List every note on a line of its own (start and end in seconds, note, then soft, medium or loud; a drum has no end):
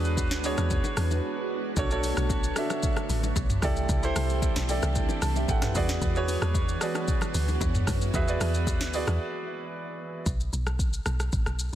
0.00 0.33 E2 loud
0.00 1.73 E3 medium
0.00 1.73 G#3 medium
0.00 3.59 B3 medium
0.00 0.44 D4 loud
0.00 1.73 D4 medium
0.00 0.45 F#4 medium
0.00 3.59 F#4 medium
0.00 0.45 G#4 medium
0.00 1.78 B4 loud
0.00 0.46 C#5 loud
0.05 shaker medium
0.17 kick loud
0.17 high bongo medium
0.17 shaker medium
0.31 0.55 D2 loud
0.31 snare medium
0.31 shaker medium
0.44 1.29 D4 medium
0.44 1.29 F#4 medium
0.44 1.30 G#4 medium
0.44 1.30 C#5 loud
0.44 open hi-hat soft
0.44 shaker medium
0.58 0.81 E2 medium
0.58 cross-stick medium
0.58 low bongo medium
0.58 shaker medium
0.70 kick loud
0.70 low conga medium
0.70 shaker medium
0.84 low bongo medium
0.84 shaker medium
0.97 1.21 E2 medium
0.97 cross-stick loud
0.97 open hi-hat medium
0.97 shaker medium
1.11 low bongo medium
1.11 shaker medium
1.77 2.13 B1 loud
1.77 3.61 D3 medium
1.77 5.71 A3 medium
1.77 1.88 D4 loud
1.77 1.88 F#4 medium
1.77 1.88 A4 medium
1.77 3.61 C#5 medium
1.77 1.89 C#5 loud
1.77 kick loud
1.77 low conga medium
1.77 shaker loud
1.90 2.44 D4 loud
1.90 2.44 F#4 medium
1.90 2.44 A4 medium
1.90 2.44 C#5 loud
1.90 shaker medium
2.03 open hi-hat medium
2.03 low bongo medium
2.03 shaker loud
2.17 2.52 B1 loud
2.17 cross-stick medium
2.17 shaker medium
2.30 kick loud
2.30 high bongo medium
2.30 shaker medium
2.44 shaker medium
2.56 3.42 D4 medium
2.56 3.42 F#4 medium
2.56 3.42 A4 medium
2.56 3.42 E5 loud
2.56 cross-stick loud
2.56 open hi-hat soft
2.56 shaker medium
2.70 cross-stick medium
2.70 low bongo medium
2.70 shaker medium
2.83 kick loud
2.83 low conga medium
2.83 shaker medium
2.96 cross-stick medium
2.96 low bongo medium
2.96 shaker medium
3.09 3.33 A1 loud
3.09 open hi-hat medium
3.09 shaker medium
3.23 low bongo medium
3.23 shaker medium
3.36 3.60 B1 loud
3.36 kick medium
3.36 high bongo medium
3.36 shaker medium
3.50 mid tom medium
3.50 shaker medium
3.62 3.86 C2 loud
3.62 10.22 E3 medium
3.62 5.73 C4 medium
3.62 5.73 D4 medium
3.62 3.95 E4 loud
3.62 5.73 G4 medium
3.62 3.95 G4 medium
3.62 3.95 A4 medium
3.62 3.95 D5 loud
3.62 kick loud
3.62 cross-stick medium
3.62 open hi-hat medium
3.62 low conga medium
3.62 shaker medium
3.76 shaker medium
3.89 4.13 C2 loud
3.89 kick loud
3.89 low conga medium
3.89 shaker loud
4.03 4.56 E4 loud
4.03 4.56 G4 medium
4.03 4.57 A4 medium
4.03 4.57 C5 loud
4.03 shaker medium
4.16 4.52 C2 loud
4.16 cross-stick loud
4.16 open hi-hat medium
4.16 low bongo medium
4.16 shaker loud
4.30 shaker medium
4.42 kick loud
4.42 high bongo medium
4.42 shaker medium
4.56 4.80 B1 medium
4.56 snare medium
4.56 shaker medium
4.69 5.54 E4 medium
4.69 4.96 G4 medium
4.69 4.96 A4 medium
4.69 4.96 D5 loud
4.69 open hi-hat soft
4.69 shaker medium
4.83 5.06 C2 medium
4.83 cross-stick medium
4.83 low bongo medium
4.83 shaker medium
4.95 kick loud
4.95 low conga medium
4.95 shaker medium
5.09 low bongo medium
5.09 shaker medium
5.22 5.46 C2 loud
5.22 5.47 A5 medium
5.22 cross-stick medium
5.22 open hi-hat medium
5.22 shaker medium
5.36 5.49 G4 medium
5.36 5.48 E5 medium
5.36 low bongo medium
5.36 shaker medium
5.48 5.72 A1 loud
5.48 5.62 A4 medium
5.48 5.62 F#5 medium
5.48 5.62 G5 medium
5.48 kick medium
5.48 high bongo medium
5.48 shaker medium
5.62 5.75 B4 medium
5.62 5.88 G5 medium
5.62 cross-stick medium
5.62 snare medium
5.62 mid tom medium
5.62 shaker medium
5.75 5.99 E2 loud
5.75 10.22 G#3 medium
5.75 10.22 B3 medium
5.75 7.85 D4 medium
5.75 10.22 F#4 medium
5.75 6.07 F#4 loud
5.75 6.07 G#4 medium
5.75 6.08 B4 medium
5.75 6.08 D5 loud
5.75 6.00 F#5 medium
5.75 kick medium
5.75 open hi-hat medium
5.75 low conga medium
5.75 shaker medium
5.89 snare medium
5.89 shaker medium
6.01 6.37 E2 loud
6.01 kick loud
6.01 low conga medium
6.01 shaker loud
6.15 6.68 F#4 medium
6.15 6.69 G#4 medium
6.15 6.69 B4 medium
6.15 6.69 C#5 loud
6.15 shaker medium
6.28 open hi-hat medium
6.28 low bongo medium
6.28 shaker loud
6.42 6.77 E2 loud
6.42 cross-stick loud
6.42 shaker medium
6.54 kick loud
6.54 high bongo medium
6.54 shaker medium
6.69 shaker medium
6.81 7.66 F#4 medium
6.81 7.67 G#4 medium
6.81 7.67 B4 medium
6.81 7.67 D5 loud
6.81 cross-stick loud
6.81 open hi-hat soft
6.81 shaker medium
6.95 cross-stick medium
6.95 low bongo medium
6.95 shaker medium
7.08 kick loud
7.08 low conga medium
7.08 shaker medium
7.21 cross-stick medium
7.21 low bongo medium
7.21 shaker medium
7.34 7.58 D2 medium
7.34 open hi-hat medium
7.34 shaker medium
7.48 low bongo medium
7.48 shaker medium
7.61 7.84 E2 loud
7.61 kick medium
7.61 high bongo medium
7.61 shaker medium
7.75 mid tom medium
7.75 shaker medium
7.87 8.11 F#2 medium
7.87 10.24 E4 medium
7.87 kick loud
7.87 cross-stick medium
7.87 open hi-hat medium
7.87 low conga medium
7.87 shaker medium
8.01 shaker medium
8.14 8.38 E2 loud
8.14 8.25 F#4 loud
8.14 8.25 G#4 medium
8.14 8.26 B4 medium
8.14 8.26 E5 loud
8.14 kick loud
8.14 low conga medium
8.14 shaker loud
8.28 8.81 F#4 loud
8.28 8.81 G#4 medium
8.28 8.81 B4 medium
8.28 8.82 D5 loud
8.28 shaker medium
8.40 8.82 E2 loud
8.40 cross-stick loud
8.40 open hi-hat medium
8.40 low bongo medium
8.40 shaker medium
8.54 shaker medium
8.67 kick medium
8.67 high bongo medium
8.67 shaker medium
8.81 9.04 D2 medium
8.81 snare medium
8.81 shaker medium
8.94 9.79 F#4 medium
8.94 9.79 G#4 medium
8.94 9.79 B4 medium
8.94 9.80 D5 loud
8.94 open hi-hat soft
8.94 shaker medium
9.07 9.19 E2 medium
9.07 cross-stick medium
9.07 low bongo medium
9.07 shaker medium
10.26 10.50 B1 loud
10.26 kick loud
10.26 shaker medium
10.40 shaker medium
10.53 11.00 B1 loud
10.53 shaker medium
10.67 cross-stick medium
10.67 shaker soft
10.79 kick loud
10.79 shaker medium
10.93 shaker medium
11.06 11.30 B1 loud
11.06 cross-stick loud
11.06 shaker medium
11.20 cross-stick medium
11.20 shaker medium
11.33 11.45 A1 loud
11.33 kick loud
11.33 shaker medium
11.46 11.70 B1 medium
11.46 cross-stick medium
11.46 shaker medium
11.59 shaker medium